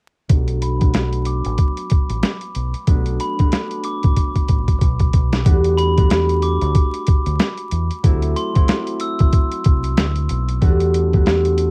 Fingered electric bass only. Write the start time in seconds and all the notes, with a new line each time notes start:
0.30 B1
1.46 A1
2.10 A1
2.56 B1
2.88 B1
4.05 A1
4.49 A1
4.82 B1
5.14 B1
5.46 E2
6.62 D2
7.27 D2
7.72 E2
8.04 D2
9.21 C2
9.66 C2
9.98 D2
10.30 B1
10.62 E2